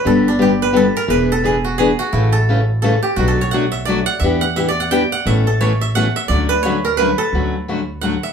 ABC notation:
X:1
M:3/4
L:1/16
Q:"Swing" 1/4=173
K:D
V:1 name="Koto"
A2 D2 G2 B2 A2 _B2 | B2 A2 ^G2 F2 G2 F2 | E2 A2 z4 A2 G2 | (3F2 A2 c2 f2 e2 d2 f2 |
e2 f2 (3e2 d2 f2 g2 f2 | e2 A2 c2 e2 f2 e2 | d2 B2 c2 _B2 =B2 A2- | A2 z6 f2 e2 |]
V:2 name="Steel-string acoustic guitar"
[D,G,B,DG]2 z2 [D,G,B,DG] z3 [D,G,B,DG] z3 | [E,B,D^G]2 z2 [E,B,DG] z3 [E,B,DG] z3 | [C,E,A,CA]2 z2 [C,E,A,CA] z3 [C,E,A,CA] z3 | [B,,F,A,DF]2 z2 [B,,F,A,DF] z3 [B,,F,A,DF] z3 |
[E,B,DG]2 z2 [E,B,DG] z3 [E,B,DG] z3 | [B,,E,A,CA]2 z2 [B,,E,A,CA] z3 [B,,E,A,CA] z3 | [D,F,A,CF]2 z2 [D,F,A,CF] z3 [D,F,A,CF] z3 | [D,F,A,CF]2 z2 [D,F,A,CF] z3 [D,F,A,CF] z3 |]
V:3 name="Upright bass" clef=bass
G,,,12 | E,,,12 | A,,,12 | B,,,12 |
E,,12 | A,,,12 | D,,12 | D,,12 |]